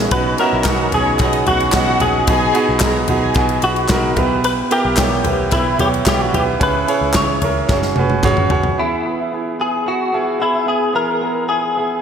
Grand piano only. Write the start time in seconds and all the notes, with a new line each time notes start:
Already playing: B3 C#4 E4 F#4 G#4 A#4 B4
0.11 B2 B3 C#4 D#4 F#4
0.39 B3 C#4 D#4 F#4
0.66 B3 C#4 D#4 F#4
0.93 B3 C#4 D#4 G#4
1.21 B3 C#4 D#4 F#4
1.47 B3 C#4 D#4 G#4
1.74 B3 C#4 D#4 F#4
2.01 B3 C#4 D#4 G#4
2.27 B2 B3 D#4 F#4 G#4
2.54 B3 D#4 F#4 G#4
2.82 B3 D#4 F#4 G#4
3.08 B3 D#4 F#4 G#4
3.36 B3 D#4 F#4 G#4
3.63 B3 D#4 F#4 B4
3.90 B3 D#4 F#4 A#4
4.16 B2 B3 E4 G4 B4
4.71 B3 E4 G4 A#4
4.97 B3 E4 G4 C#5
5.24 B3 E4 G4 B4
5.52 B3 E4 G4 B4
5.79 B3 E4 G4 C#5
6.06 B3 E4 G4 C#5
6.33 B3 E4 G4 B4
6.60 C#3 C#4 E4 G#4 B4
6.87 C#4 E4 G#4 C#5
7.15 C#4 E4 G#4 C#5
7.42 C#4 E4 G#4 A#4
7.70 C#4 F#4 G#4 C#5
7.97 C#4 F#4 G#4 B4
8.23 C#4 F#4 G#4 C#5
8.49 C#4 F#4 G#4 C#5
8.78 E3 B3 E4 G#4
9.04 B3 E4 G#4
9.32 B3 E4 G#4
9.59 B3 E4 G#4
9.86 B3 E4 G#4
10.12 B3 E4 G#4
10.40 B3 E4 G#4
10.66 B3 E4 G#4
10.93 E3 B3 E4 G#4
11.21 B3 E4 G#4
11.49 B3 E4 G#4
11.76 B3 E4 G#4